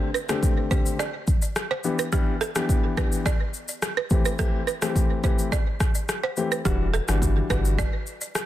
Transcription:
0.14 B4, shaker
0.29 D3 A3 C4 G4, cross-stick, shaker
0.43 kick, shaker
0.71 D3 A3 C4 G4 C5, kick, shaker
0.86 shaker
0.99 D5, cross-stick, shaker
1.27 kick, shaker
1.42 shaker
1.56 cross-stick, shaker
1.71 C5
1.84 E3 B3 D4 G4, shaker
1.99 B4, shaker
2.12 E3 B3 D4 G4, kick, shaker
2.41 A4, shaker
2.55 E3 B3 D4 G4, cross-stick, shaker
2.69 kick, shaker
2.97 E3 B3 D4 G4 B4, kick, cross-stick, shaker
3.12 shaker
3.26 D5, kick, cross-stick, shaker
3.54 shaker
3.68 shaker
3.82 cross-stick, shaker
3.97 B4
4.10 E3 A3 C4 G4, kick, shaker
4.25 B4, shaker
4.39 E3 A3 C4 G4 A4, kick, shaker
4.67 B4, shaker
4.82 E3 A3 C4 G4, cross-stick, shaker
4.96 kick, shaker
5.24 E3 A3 C4 G4 C5, kick, shaker
5.39 shaker
5.52 D5, kick, cross-stick, shaker
5.80 kick, cross-stick, shaker
5.95 shaker
6.09 cross-stick, shaker
6.24 C5
6.37 E3 A3 C4 G4, shaker
6.52 B4, shaker
6.65 E1 E3 G3 D4 F#4 G4, kick, shaker
6.94 A4, shaker
7.08 G1 E3 G3 D4 F#4, cross-stick, shaker
7.22 kick, shaker
7.50 G1 E3 G3 D4 F#4 B4, kick, cross-stick, shaker
7.65 shaker
7.79 D5, kick, cross-stick, shaker
8.07 shaker
8.21 shaker
8.35 cross-stick, shaker

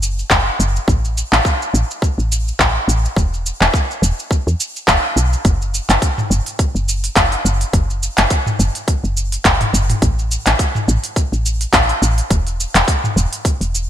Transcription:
Already playing: F#1
0.03 shaker
0.19 shaker
0.30 F#1, kick, clap, shaker
0.60 F#1, shaker
0.76 shaker
0.88 A1, kick, shaker
1.05 shaker
1.18 shaker
1.32 A1, clap, shaker
1.45 kick, shaker
1.62 shaker
1.74 A1, shaker
1.91 shaker
2.02 kick, shaker
2.18 A1, shaker
2.32 shaker
2.48 shaker
2.59 A1, kick, clap, shaker
2.88 A1, shaker
3.05 shaker
3.16 E1, kick, shaker
3.34 shaker
3.46 shaker
3.61 E1, clap, shaker
3.74 kick, shaker
3.91 shaker
4.02 E1, shaker
4.19 shaker
4.31 kick, shaker
4.47 E2, shaker
4.60 shaker
4.76 shaker
4.88 E1, kick, clap, shaker
5.16 B1, shaker
5.33 shaker
5.45 F#1, kick, open hi-hat, shaker
5.62 shaker
5.74 shaker
5.89 F#1, clap, open hi-hat, shaker
6.02 kick, open hi-hat, shaker
6.18 mid tom, shaker
6.30 F#1, shaker
6.46 open hi-hat, shaker
6.59 kick, open hi-hat, shaker
6.75 F#1, shaker
6.89 shaker
7.04 open hi-hat, shaker
7.16 F#1, kick, clap, open hi-hat, shaker
7.32 open hi-hat
7.45 F#1, shaker
7.61 open hi-hat, shaker
7.73 F#1, kick, open hi-hat, shaker
7.90 shaker
8.03 shaker
8.18 F#1, clap, open hi-hat, shaker
8.30 kick, open hi-hat, shaker
8.46 mid tom, shaker
8.59 F#1, shaker
8.75 open hi-hat, shaker
8.88 kick, open hi-hat, shaker
9.04 F#1, shaker
9.17 shaker
9.32 open hi-hat, shaker
9.45 F#1, kick, clap, open hi-hat, shaker
9.61 mid tom, open hi-hat
9.73 F#1, shaker
9.90 mid tom, open hi-hat, shaker
10.02 A1, kick, open hi-hat, shaker
10.19 shaker
10.31 shaker
10.46 A1, clap, open hi-hat, shaker
10.59 kick, open hi-hat, shaker
10.75 mid tom, shaker
10.88 A1, shaker
11.04 open hi-hat, shaker
11.16 kick, open hi-hat, shaker
11.32 A1, shaker
11.46 shaker
11.61 open hi-hat, shaker
11.73 A1, kick, clap, open hi-hat, shaker
11.89 open hi-hat
12.02 A1, shaker
12.18 open hi-hat, shaker
12.30 E1, kick, open hi-hat, shaker
12.47 open hi-hat, shaker
12.60 shaker
12.75 E1, clap, open hi-hat, shaker
12.88 kick, open hi-hat, shaker
13.04 mid tom, shaker
13.16 E1, shaker
13.33 open hi-hat, shaker
13.45 kick, open hi-hat, shaker
13.61 E1, open hi-hat, shaker
13.75 shaker

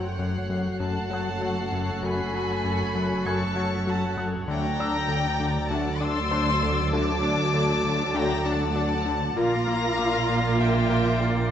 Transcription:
Already playing: F#1 F#2 A3 F#4 A4 C#5 E5 F#5 E6 F#6
0.18 F#2 C7
0.50 F#2
0.80 F#2 F#5 A5
1.11 F#3 F#5 F#6
1.42 F#3
1.72 F#2
2.03 F#2 G#5 B5
2.34 F#3
2.65 F#2
2.95 F#2
3.15 B6
3.26 F#2 G#5 A5 C#6 G#6
3.56 F#3
3.87 F#3 F#5 A5
4.17 F#2 F#6
4.48 D2 D3 F#3 A3 D5 G5 A#5 A6
4.80 D4 E6
5.09 D3 D6
5.40 D3
5.70 D3 A3 F#4 F#5 A5 E6
6.01 D4 C6 E6
6.31 D4 C5 C6
6.63 D3
6.93 D3 A3 F#4 A5 D6
7.23 D4
7.54 D3
7.85 D3
8.14 D3 F#3 A3 G5 A#5
8.46 D4 F#5 A5
8.76 D4
9.06 D3
9.36 A#1 A#2 A#3 F4 A#4 D5 F5 A#5 D6 A#6 C7
9.68 A#3
9.98 A#2 D6
10.29 A#2
10.58 A#2 A#3 F4 E5 G5
10.90 A#3
11.21 A#3

